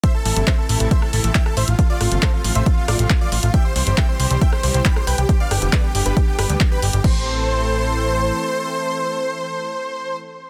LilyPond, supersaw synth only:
\new Staff \with { instrumentName = "Supersaw synth" } { \time 4/4 \key a \minor \tempo 4 = 137 <c'' e''>16 a'16 a'16 a'16 <c'' e''>16 a'16 a'16 a'16 <c'' e''>16 a'16 a'16 a'16 <e'' g''>16 a'16 <c'' e''>16 f'16 | f'16 <f' d''>16 f'16 f'16 <a' c''>16 f'16 f'16 <c'' e''>16 f'16 f'16 <f' d''>16 f'16 f'16 <f' d''>16 f'16 f'16 | <e'' g''>16 c''16 c''16 c''16 <e'' g''>16 c''16 c''16 c''16 <e'' g''>16 c''16 c''16 c''16 <g'' b''>16 c''16 <b' g''>16 g'16 | g'16 <d'' f''>16 g'16 g'16 <b' d''>16 g'16 g'16 <g' b'>16 g'16 g'16 <g' b'>16 g'16 g'16 <g' b'>16 g'16 g'16 |
c''1~ | c''1 | }